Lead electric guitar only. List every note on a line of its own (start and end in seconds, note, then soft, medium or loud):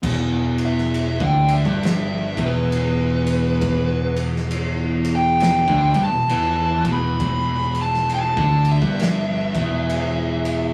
0.65 1.25 E5 medium
1.25 1.53 G5 medium
1.54 2.41 E5 medium
2.46 4.20 B4 loud
5.15 6.01 G5 loud
6.03 6.89 A5 loud
6.93 7.79 B5 medium
7.82 8.10 A5 medium
8.14 8.70 A5 loud
8.71 10.73 E5 loud